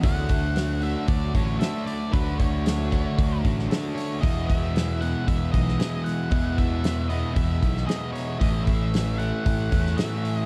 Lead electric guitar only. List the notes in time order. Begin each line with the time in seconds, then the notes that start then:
0.04 F#5
0.83 E5
1.08 D5
1.35 C#5
1.59 E5
1.86 D5
2.13 B4
2.38 C#5
3.95 C#5
4.21 D#5
4.47 D#5
4.58 E5
5.01 F#5
5.27 E5
5.52 D#5
6.04 F#5
6.58 E5
7.09 D#5
7.35 E5
7.86 D#5
8.13 C#5
8.40 D#5
8.65 E5
9.18 F#5
9.97 E5
10.37 D#5